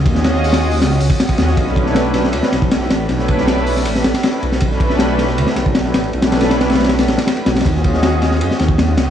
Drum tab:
RD |x---x-----x-----x-----x-x-x-x---|x---x---x---x---x---x---x---x---|x---x---x-------x---x-x-x-x-x---|x---x---x---x---x---x---x---x-x-|
HH |--------o-----o-----o-----------|--------------------------------|------------o-------------------|--------------------------------|
SD |--o-o-o---o-----o-o-----o---o-o-|--o---o-o---o-o---o-o---o-o-o---|o-o---o-o-o---o---o-o-o-o-----o-|--o---o-o---o-o---o-o---o-o-o---|
BD |o---------------------o---o-----|o---o-----------------o---------|----o---------------------------|o---o-----------------o---------|

RD |x-x-x-x-x-x-xxxxx-x-x-x-x-x-x-xx|x---x---x---x---x---x---x---x---|
HH |--------------------------------|--------------------------------|
SD |--o-o-o-o-o-ooooo-o-o-o-o---o-oo|--o---o-o---o-o---o-o---o-o-o---|
BD |--------------------------------|o---o-----------------o---------|